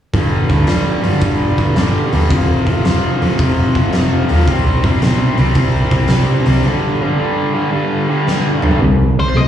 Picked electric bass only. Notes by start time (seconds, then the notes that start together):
0.14 G1
0.50 D2
0.68 F2
1.05 G1
1.22 G1
1.58 G1
1.77 G2
2.13 D#2
2.31 F1
2.67 F1
2.86 F1
3.22 F1
3.39 F1
3.76 F1
3.94 F1
4.31 D#2
4.48 C2
4.84 G2
5.01 B2
5.38 C2
5.55 C2
5.91 C2
6.10 C3
6.47 C2
8.82 C2
9.18 C2
9.36 C2